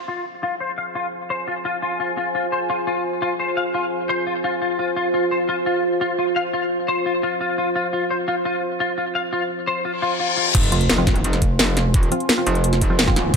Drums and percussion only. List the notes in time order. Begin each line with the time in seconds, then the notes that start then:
10.55 kick, closed hi-hat, crash
10.63 closed hi-hat
10.72 closed hi-hat
10.81 closed hi-hat
10.90 snare, closed hi-hat
11.07 kick, snare, closed hi-hat
11.16 closed hi-hat
11.24 closed hi-hat
11.33 snare, closed hi-hat
11.42 kick, closed hi-hat
11.59 snare, closed hi-hat
11.77 snare, closed hi-hat
11.94 kick, closed hi-hat
12.03 closed hi-hat
12.12 closed hi-hat
12.20 closed hi-hat
12.29 snare, closed hi-hat
12.47 closed hi-hat
12.55 closed hi-hat
12.64 closed hi-hat
12.73 snare, closed hi-hat
12.81 kick, closed hi-hat
12.99 snare, closed hi-hat
13.08 kick, snare
13.16 snare, closed hi-hat